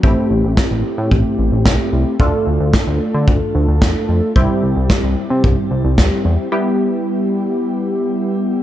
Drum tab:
SD |--o---o-|--o---o-|--o---o-|--------|
BD |o-o-o-o-|o-o-o-o-|o-o-o-o-|--------|